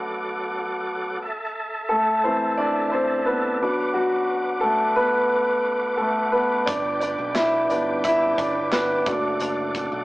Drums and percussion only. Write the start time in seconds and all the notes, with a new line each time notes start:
6.67 kick, closed hi-hat
7.01 closed hi-hat
7.35 snare, clap, closed hi-hat
7.70 closed hi-hat
8.04 kick, closed hi-hat
8.38 kick, closed hi-hat
8.72 snare, clap, closed hi-hat
9.06 kick, closed hi-hat
9.40 closed hi-hat
9.75 kick, closed hi-hat